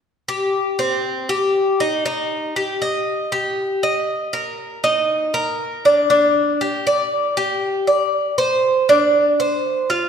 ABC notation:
X:1
M:4/4
L:1/8
Q:1/4=118
K:Cm
V:1 name="Cuban tres"
z G2 C2 G2 E | E2 G e2 G2 e- | e B2 E2 B2 D | D2 G d2 G2 d- |
d c2 D2 c2 F |]